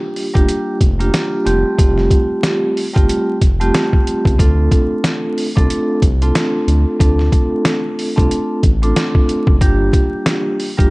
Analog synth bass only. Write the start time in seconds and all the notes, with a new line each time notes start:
0.35 F1
0.81 F1
1.46 F1
1.79 F1
2.96 G1
3.42 F1
4.25 C#2
4.39 D2
5.57 C2
6.02 C2
6.68 D2
7.00 D2
8.18 C2
8.63 A1
9.47 F#1
9.61 G1
10.79 F1